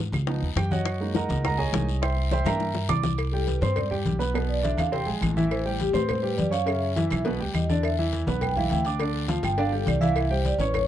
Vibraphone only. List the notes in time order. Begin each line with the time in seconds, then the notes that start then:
3.32 A4
3.47 B4
3.61 C5
4.49 D5
4.64 E5
4.78 F5
4.93 G5
5.51 C5
5.66 E4
5.80 G4
5.93 B4
6.09 C5
6.22 B4
6.37 D5
6.52 F5
6.67 E5
7.55 D#5
7.69 D5
7.84 E5
8.42 G5
8.57 F5
8.71 G5
9.44 G5
9.58 F5
9.72 A4
9.88 D5
10.01 F5
10.16 E5
10.31 C5
10.45 D5
10.59 B4
10.75 C#5